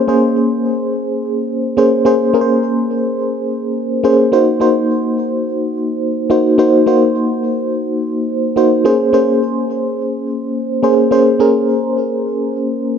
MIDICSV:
0, 0, Header, 1, 2, 480
1, 0, Start_track
1, 0, Key_signature, -5, "minor"
1, 0, Tempo, 566038
1, 1746, Time_signature, 4, 2, 24, 8
1, 11011, End_track
2, 0, Start_track
2, 0, Title_t, "FM electric piano"
2, 0, Program_c, 0, 5
2, 0, Control_c, 0, 64, 127
2, 0, Note_on_c, 0, 58, 84
2, 0, Note_on_c, 0, 61, 78
2, 0, Note_on_c, 0, 68, 70
2, 0, Note_on_c, 0, 72, 91
2, 63, Note_off_c, 0, 58, 0
2, 63, Note_on_c, 0, 58, 83
2, 66, Note_off_c, 0, 61, 0
2, 66, Note_on_c, 0, 61, 74
2, 70, Note_off_c, 0, 68, 0
2, 70, Note_on_c, 0, 68, 79
2, 74, Note_off_c, 0, 72, 0
2, 74, Note_on_c, 0, 72, 88
2, 798, Note_off_c, 0, 58, 0
2, 799, Note_off_c, 0, 61, 0
2, 801, Note_off_c, 0, 68, 0
2, 803, Note_off_c, 0, 72, 0
2, 1500, Note_on_c, 0, 58, 75
2, 1503, Note_on_c, 0, 61, 70
2, 1507, Note_on_c, 0, 68, 67
2, 1510, Note_on_c, 0, 72, 82
2, 1701, Note_off_c, 0, 58, 0
2, 1702, Note_off_c, 0, 61, 0
2, 1704, Note_off_c, 0, 68, 0
2, 1706, Note_off_c, 0, 72, 0
2, 1739, Note_on_c, 0, 58, 83
2, 1741, Note_on_c, 0, 61, 74
2, 1745, Note_on_c, 0, 68, 81
2, 1748, Note_on_c, 0, 72, 94
2, 1940, Note_off_c, 0, 58, 0
2, 1941, Note_off_c, 0, 61, 0
2, 1943, Note_off_c, 0, 68, 0
2, 1945, Note_off_c, 0, 72, 0
2, 1980, Note_on_c, 0, 58, 85
2, 1984, Note_on_c, 0, 61, 69
2, 1987, Note_on_c, 0, 68, 76
2, 1991, Note_on_c, 0, 70, 66
2, 2046, Note_on_c, 0, 72, 93
2, 2058, Note_off_c, 0, 70, 0
2, 2716, Note_off_c, 0, 58, 0
2, 2718, Note_off_c, 0, 61, 0
2, 2720, Note_off_c, 0, 68, 0
2, 2749, Note_off_c, 0, 72, 0
2, 3422, Note_on_c, 0, 58, 78
2, 3426, Note_on_c, 0, 61, 71
2, 3428, Note_on_c, 0, 68, 72
2, 3432, Note_on_c, 0, 72, 88
2, 3621, Note_off_c, 0, 58, 0
2, 3624, Note_off_c, 0, 61, 0
2, 3625, Note_off_c, 0, 68, 0
2, 3626, Note_off_c, 0, 72, 0
2, 3662, Note_on_c, 0, 58, 84
2, 3666, Note_on_c, 0, 63, 76
2, 3670, Note_on_c, 0, 66, 74
2, 3674, Note_on_c, 0, 72, 94
2, 3677, Control_c, 0, 64, 0
2, 3837, Control_c, 0, 64, 127
2, 3862, Note_off_c, 0, 58, 0
2, 3864, Note_off_c, 0, 63, 0
2, 3866, Note_off_c, 0, 66, 0
2, 3867, Note_off_c, 0, 72, 0
2, 3901, Note_on_c, 0, 58, 82
2, 3905, Note_on_c, 0, 63, 79
2, 3909, Note_on_c, 0, 66, 71
2, 3912, Note_on_c, 0, 72, 92
2, 4637, Note_off_c, 0, 58, 0
2, 4639, Note_off_c, 0, 63, 0
2, 4641, Note_off_c, 0, 66, 0
2, 4642, Note_off_c, 0, 72, 0
2, 5340, Note_on_c, 0, 58, 74
2, 5343, Note_on_c, 0, 63, 75
2, 5347, Note_on_c, 0, 66, 70
2, 5350, Note_on_c, 0, 72, 79
2, 5540, Note_off_c, 0, 58, 0
2, 5542, Note_off_c, 0, 63, 0
2, 5544, Note_off_c, 0, 66, 0
2, 5545, Note_off_c, 0, 72, 0
2, 5579, Note_on_c, 0, 58, 83
2, 5583, Note_on_c, 0, 63, 83
2, 5586, Note_on_c, 0, 66, 77
2, 5590, Note_on_c, 0, 72, 92
2, 5780, Note_off_c, 0, 58, 0
2, 5782, Note_off_c, 0, 63, 0
2, 5784, Note_off_c, 0, 66, 0
2, 5785, Note_off_c, 0, 72, 0
2, 5820, Note_on_c, 0, 58, 87
2, 5823, Note_on_c, 0, 63, 74
2, 5826, Note_on_c, 0, 66, 76
2, 5829, Note_on_c, 0, 72, 90
2, 6556, Note_off_c, 0, 58, 0
2, 6558, Note_off_c, 0, 63, 0
2, 6559, Note_off_c, 0, 66, 0
2, 6561, Note_off_c, 0, 72, 0
2, 7259, Note_on_c, 0, 58, 77
2, 7264, Note_on_c, 0, 63, 67
2, 7267, Note_on_c, 0, 66, 65
2, 7271, Note_on_c, 0, 72, 84
2, 7460, Note_off_c, 0, 58, 0
2, 7463, Note_off_c, 0, 63, 0
2, 7464, Note_off_c, 0, 66, 0
2, 7466, Note_off_c, 0, 72, 0
2, 7501, Note_on_c, 0, 58, 81
2, 7505, Note_on_c, 0, 61, 72
2, 7508, Note_on_c, 0, 68, 77
2, 7511, Note_on_c, 0, 72, 91
2, 7515, Control_c, 0, 64, 0
2, 7647, Control_c, 0, 64, 127
2, 7701, Note_off_c, 0, 58, 0
2, 7703, Note_off_c, 0, 61, 0
2, 7705, Note_off_c, 0, 68, 0
2, 7706, Note_off_c, 0, 72, 0
2, 7740, Note_on_c, 0, 58, 80
2, 7744, Note_on_c, 0, 61, 74
2, 7747, Note_on_c, 0, 68, 72
2, 7750, Note_on_c, 0, 72, 90
2, 8476, Note_off_c, 0, 58, 0
2, 8478, Note_off_c, 0, 61, 0
2, 8480, Note_off_c, 0, 68, 0
2, 8481, Note_off_c, 0, 72, 0
2, 9181, Note_on_c, 0, 58, 76
2, 9185, Note_on_c, 0, 61, 68
2, 9188, Note_on_c, 0, 68, 70
2, 9191, Note_on_c, 0, 72, 79
2, 9381, Note_off_c, 0, 58, 0
2, 9383, Note_off_c, 0, 61, 0
2, 9384, Note_off_c, 0, 68, 0
2, 9386, Note_off_c, 0, 72, 0
2, 9421, Note_on_c, 0, 58, 83
2, 9424, Note_on_c, 0, 61, 76
2, 9428, Note_on_c, 0, 68, 72
2, 9431, Note_on_c, 0, 72, 97
2, 9621, Note_off_c, 0, 58, 0
2, 9623, Note_off_c, 0, 61, 0
2, 9625, Note_off_c, 0, 68, 0
2, 9626, Note_off_c, 0, 72, 0
2, 9662, Note_on_c, 0, 58, 81
2, 9664, Note_on_c, 0, 61, 78
2, 9668, Note_on_c, 0, 68, 78
2, 9671, Note_on_c, 0, 70, 87
2, 10397, Note_off_c, 0, 58, 0
2, 10399, Note_off_c, 0, 61, 0
2, 10400, Note_off_c, 0, 68, 0
2, 10402, Note_off_c, 0, 70, 0
2, 11011, End_track
0, 0, End_of_file